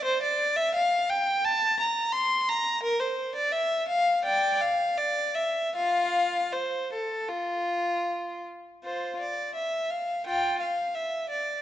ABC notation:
X:1
M:4/4
L:1/16
Q:1/4=84
K:F
V:1 name="Violin"
c d2 e f2 g2 a2 b2 c'2 b2 | B c2 d e2 f2 [dg]2 f2 d2 e2 | [Ff]4 c2 A2 F6 z2 | [Fc]2 d2 e2 f2 [Fg]2 f2 e2 d2 |]